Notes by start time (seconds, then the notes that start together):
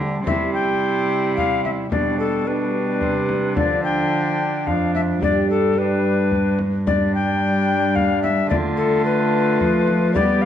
Already playing: D3 C4 E4
0.00 G3
0.24 C3 G3 C4 E4 E5, frame drum
0.54 G5
1.36 F5, frame drum
1.65 E5, frame drum
1.90 B2 G3 D4 G4 D5, frame drum
2.19 A4
2.45 G3 D4 G4 B4
3.01 C3, frame drum
3.29 frame drum
3.55 D3 F3 D4 A4 D5, frame drum
3.84 G5
4.66 F2 F3 D4 F5, frame drum
4.95 E5, frame drum
5.19 G2 G3 D4 G4, frame drum
5.23 D5
5.50 A4
5.73 D4 G4
5.77 G3 D4 B4
6.32 frame drum
6.59 frame drum
6.87 G3 D4 D5, frame drum
7.15 G5
7.95 F5, frame drum
8.23 E5, frame drum
8.47 D3 A3 D4 F4 D5
8.51 A3, frame drum
8.77 A4
9.05 B4
9.60 F3, frame drum
9.88 frame drum
10.12 G3 B3 D4 G4 D5, frame drum
10.42 F5